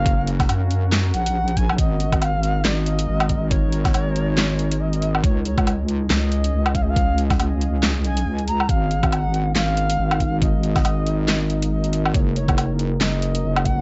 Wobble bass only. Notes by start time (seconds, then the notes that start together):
Already playing: F#1
0.49 F#2
1.14 A#1
1.79 G#1
2.65 G#1
3.08 G#1
3.94 G#1
5.24 C#2
6.10 C#2
6.53 C#2
7.40 C#2
8.00 C2
8.26 C#2
8.69 G#1
9.56 G#1
9.99 G#1
10.85 G#1
12.14 F#1
13.01 F#1
13.44 F#1